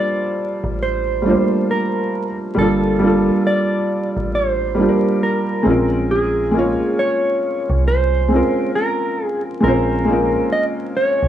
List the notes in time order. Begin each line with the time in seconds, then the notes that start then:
Already playing: G3 A#3 D4 F4 A4 C5 D5
0.64 A1
0.83 C5
1.22 G3 A3 D4
1.28 A#3 F4 C5
1.71 A#4
2.55 G1 G3 A#3 D4 A4
2.60 F4 A4
2.99 G3 A#3 D4
3.04 F4 A4
3.47 D5
4.17 A1
4.35 C5
4.75 G3 A#3 D4
4.80 F4 G4
4.89 A#4
5.23 A#4
5.63 A#1 G#3 C4 C#4
5.69 F4 A#4
6.11 G#4
6.51 G#3 A#3 C#4
6.57 F4 C#5
6.99 C#5
7.70 C2
7.88 C5
8.28 G#3 C4 C#4
8.34 F4 A#4
8.75 A#4
9.25 G#4
9.60 A#1 G#3 C4 C#4 A#4
9.66 F4 C5
10.05 G#3 A#3 C#4
10.10 F4 A#4
10.52 D#5
10.97 C#5
11.23 C2